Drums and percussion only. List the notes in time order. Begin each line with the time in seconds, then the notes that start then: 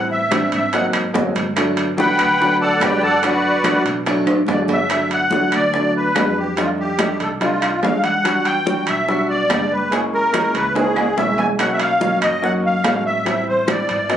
0.11 high conga
0.31 high bongo, high conga, high timbale, low timbale, claves
0.52 high bongo, high conga, high timbale
0.73 high bongo, high conga, high timbale
0.93 high bongo, high conga, high timbale, claves
1.14 high bongo, low bongo, high conga, low timbale
1.36 high bongo, high conga, high timbale
1.56 high bongo, high conga, high timbale, claves
1.77 high conga, high timbale
1.98 high bongo, high conga, low timbale
2.19 high conga, high timbale, claves
2.39 high bongo, high conga
2.60 high conga
2.80 high bongo, low bongo, high conga, high timbale, low timbale, claves
3.02 high conga
3.23 high bongo, high conga, high timbale
3.43 high conga
3.64 high bongo, high conga, high timbale, low timbale, claves
3.85 high bongo, high conga, high timbale
4.06 high bongo, high conga, high timbale
4.26 high bongo, high conga, high timbale, claves
4.46 high bongo, low bongo, high conga, low timbale
4.68 high bongo, high conga, low timbale
4.89 high bongo, high conga, high timbale, claves
5.10 high conga, high timbale
5.31 high bongo, high conga, low timbale
5.52 high conga, high timbale, claves
5.73 high bongo, high conga
5.94 high conga
6.15 high bongo, low bongo, high conga, high timbale, low timbale, claves
6.57 high bongo, high conga, high timbale
6.78 high conga
6.99 high bongo, high conga, high timbale, low timbale, claves
7.20 high bongo, high conga, high timbale
7.40 high bongo, high conga, high timbale
7.61 high bongo, high conga, high timbale, claves
7.83 high bongo, low bongo, high conga, low timbale
8.04 high bongo, high conga, high timbale
8.25 high bongo, high conga, high timbale, claves
8.45 high conga, high timbale
8.66 high bongo, high conga, low timbale
8.87 high conga, high timbale, claves
9.08 high bongo, high conga
9.29 high conga
9.50 high bongo, low bongo, high conga, high timbale, low timbale, claves
9.92 high bongo, high conga, high timbale
10.14 high conga
10.34 high bongo, high conga, high timbale, low timbale, claves
10.55 high bongo, high conga, high timbale
10.75 high bongo, high conga, high timbale
10.96 high bongo, high conga, low timbale, claves
11.18 high bongo, low bongo, high conga, low timbale
11.38 high bongo, high conga, low timbale
11.59 high bongo, high conga, high timbale, claves
11.80 high conga, high timbale
12.01 high bongo, high conga, low timbale
12.22 high conga, high timbale, claves
12.43 high bongo, high conga
12.63 high conga
12.84 high bongo, low bongo, high conga, high timbale, low timbale, claves
13.26 high bongo, high conga, high timbale
13.47 high conga
13.68 high bongo, high conga, high timbale, low timbale, claves
13.89 high bongo, high conga, high timbale
14.09 high bongo, high conga, high timbale